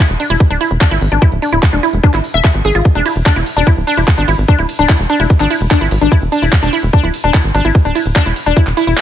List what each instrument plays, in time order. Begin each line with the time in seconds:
0.10 analog synth bass E1, closed hi-hat
0.20 synth arpeggio sound D4, open hi-hat
0.30 analog synth bass E1, synth arpeggio sound E4, closed hi-hat
0.40 kick, closed hi-hat
0.50 analog synth bass D1, synth arpeggio sound D4
0.61 synth arpeggio sound E4, open hi-hat
0.71 analog synth bass E1, closed hi-hat
0.81 synth arpeggio sound D4, kick, clap, closed hi-hat
0.91 analog synth bass G#1, synth arpeggio sound E4, closed hi-hat
1.01 analog synth bass G#1, open hi-hat
1.12 analog synth bass G#1, synth arpeggio sound D4, closed hi-hat
1.22 synth arpeggio sound E4, kick, closed hi-hat
1.32 analog synth bass D1, closed hi-hat
1.42 synth arpeggio sound D4, open hi-hat
1.52 analog synth bass D1, synth arpeggio sound E4, closed hi-hat
1.63 kick, clap, closed hi-hat
1.73 analog synth bass E1, synth arpeggio sound D4, closed hi-hat
1.83 synth arpeggio sound E4, open hi-hat
1.93 analog synth bass E1, closed hi-hat
2.04 synth arpeggio sound D4, kick, closed hi-hat
2.14 analog synth bass G#1, synth arpeggio sound E4, clap, closed hi-hat
2.24 open hi-hat
2.34 analog synth bass E1, synth arpeggio sound E5, closed hi-hat
2.44 synth arpeggio sound E5, kick, clap, closed hi-hat
2.55 analog synth bass G#1, closed hi-hat
2.65 analog synth bass G#1, synth arpeggio sound G#4, open hi-hat
2.75 analog synth bass G#1, synth arpeggio sound F4, closed hi-hat
2.85 kick, closed hi-hat
2.95 analog synth bass E1, synth arpeggio sound D4, closed hi-hat
3.06 synth arpeggio sound E4, open hi-hat, ride
3.16 analog synth bass E1, closed hi-hat
3.26 synth arpeggio sound D4, kick, clap, closed hi-hat
3.36 analog synth bass E1, synth arpeggio sound E4, closed hi-hat
3.46 open hi-hat, ride
3.57 analog synth bass E1, synth arpeggio sound D4, closed hi-hat
3.67 synth arpeggio sound E4, kick, closed hi-hat
3.77 analog synth bass D1
3.87 synth arpeggio sound D4, open hi-hat, ride
3.97 analog synth bass E1, synth arpeggio sound E4, closed hi-hat
4.08 kick, clap, closed hi-hat
4.18 analog synth bass G#1, synth arpeggio sound D4, closed hi-hat
4.28 analog synth bass G#1, synth arpeggio sound E4, open hi-hat, ride
4.38 analog synth bass G#1, closed hi-hat
4.48 synth arpeggio sound D4, kick, closed hi-hat
4.59 analog synth bass D1, synth arpeggio sound E4, closed hi-hat
4.69 open hi-hat, ride
4.79 analog synth bass D1, synth arpeggio sound D4, closed hi-hat
4.89 synth arpeggio sound E4, kick, clap, closed hi-hat
4.99 analog synth bass E1, closed hi-hat
5.10 synth arpeggio sound D4, open hi-hat, ride
5.20 analog synth bass E1, synth arpeggio sound E4, closed hi-hat
5.30 kick, closed hi-hat
5.40 analog synth bass G#1, synth arpeggio sound D4, clap, closed hi-hat
5.50 synth arpeggio sound E4, open hi-hat, ride
5.61 analog synth bass E1, closed hi-hat
5.71 synth arpeggio sound D4, kick, clap, closed hi-hat
5.81 analog synth bass G#1, synth arpeggio sound E4, closed hi-hat
5.91 analog synth bass G#1, open hi-hat, ride
6.01 analog synth bass G#1, synth arpeggio sound D4, closed hi-hat
6.12 synth arpeggio sound E4, kick, closed hi-hat
6.22 analog synth bass E1, closed hi-hat
6.32 synth arpeggio sound D4, open hi-hat, ride
6.42 analog synth bass E1, synth arpeggio sound E4, closed hi-hat
6.52 kick, clap, closed hi-hat
6.63 analog synth bass E1, synth arpeggio sound D4, closed hi-hat
6.73 synth arpeggio sound E4, open hi-hat, ride
6.83 analog synth bass E1, closed hi-hat
6.93 synth arpeggio sound D4, kick, closed hi-hat
7.03 analog synth bass D1, synth arpeggio sound E4
7.14 open hi-hat, ride
7.24 analog synth bass E1, synth arpeggio sound D4, closed hi-hat
7.34 synth arpeggio sound E4, kick, clap, closed hi-hat
7.44 analog synth bass G#1, closed hi-hat
7.54 analog synth bass G#1, synth arpeggio sound D4, open hi-hat, ride
7.65 analog synth bass G#1, synth arpeggio sound E4, closed hi-hat
7.75 kick, closed hi-hat
7.85 analog synth bass D1, synth arpeggio sound D4, closed hi-hat
7.95 synth arpeggio sound E4, open hi-hat, ride
8.06 analog synth bass D1, closed hi-hat
8.16 synth arpeggio sound D4, kick, clap, closed hi-hat
8.26 analog synth bass E1, synth arpeggio sound E4, closed hi-hat
8.36 open hi-hat, ride
8.46 analog synth bass E1, synth arpeggio sound D4, closed hi-hat
8.57 synth arpeggio sound E4, kick, closed hi-hat
8.67 analog synth bass E1, clap, closed hi-hat
8.77 synth arpeggio sound E4, open hi-hat, ride
8.87 analog synth bass E1, synth arpeggio sound E4, closed hi-hat
8.97 clap, closed hi-hat